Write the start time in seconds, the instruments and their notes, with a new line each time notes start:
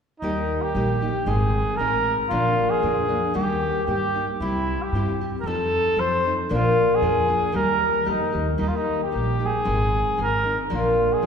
0.20 upright bass D#2, nylon-string guitar D#3 G3 A#3 D#4 G4, trumpet D#4
0.62 trumpet G4
0.74 upright bass A#1, nylon-string guitar G3 A#3 D#4 G4
1.02 nylon-string guitar A#3 D#4 G4
1.26 upright bass G#1, nylon-string guitar G#3 C4 D#4 A#4, trumpet G#4
1.77 upright bass A1, nylon-string guitar G#3 C4 D#4, trumpet A#4
1.81 nylon-string guitar A#4
2.30 upright bass A#1, nylon-string guitar A#2 D3 F3 A#3 D4 A#4, trumpet F4
2.70 trumpet G#4
2.82 upright bass F2, nylon-string guitar F3 A#3 D4 A#4
3.08 nylon-string guitar F3 A#3 D4 A#4
3.34 upright bass D#2, nylon-string guitar D#3 G3 A#3 D#4 G4, trumpet G4
3.87 upright bass G2, nylon-string guitar G3 A#3 D#4 G4
3.91 trumpet G4
4.14 nylon-string guitar A#3 D#4 G4
4.40 upright bass C2, nylon-string guitar C3 G3 C4 E4 G4, trumpet E4
4.82 trumpet G4
4.92 upright bass G2, nylon-string guitar G3 C4 E4
4.96 nylon-string guitar G4
5.21 nylon-string guitar C4 E4 G4
5.40 upright bass F2, trumpet A#4
5.46 nylon-string guitar F3 C4 D#4 A4, trumpet A4
5.97 upright bass F2, nylon-string guitar F3 C4 D#4 A4, trumpet C5
6.26 nylon-string guitar C4 D#4 A4
6.49 upright bass A#1, nylon-string guitar A#2 D3 F3 A#3 D4 A#4
6.55 trumpet F4
6.95 trumpet G#4
7.02 upright bass F2, nylon-string guitar F3 A#3 D4 A#4
7.28 nylon-string guitar F3 A#3 D4 A#4
7.52 upright bass D#2, nylon-string guitar D#3 G3 A#3 D#4 G4, trumpet A#4
8.05 upright bass F2, nylon-string guitar G3 A#3 D#4 G4
8.09 trumpet D#4
8.32 upright bass D#2, nylon-string guitar A#3 D#4 G4
8.58 upright bass D#2, nylon-string guitar D#3 G3 A#3 D#4 G4, trumpet D#4
8.68 trumpet F4
8.76 trumpet D#4
9.03 trumpet G4
9.11 upright bass A#1, nylon-string guitar G3 A#3 D#4 G4
9.39 nylon-string guitar A#3 D#4 G4
9.46 trumpet G#4
9.65 upright bass G#1, nylon-string guitar G#3 C4 D#4 A#4
10.17 upright bass G#1, nylon-string guitar G#3 C4 D#4 A#4
10.22 trumpet A#4
10.44 nylon-string guitar C4 D#4 A#4
10.70 upright bass A#1, nylon-string guitar A#2 D3 F3 A#3 D4 A#4
10.75 trumpet F4
11.13 trumpet G#4
11.22 nylon-string guitar F3 A#3 D4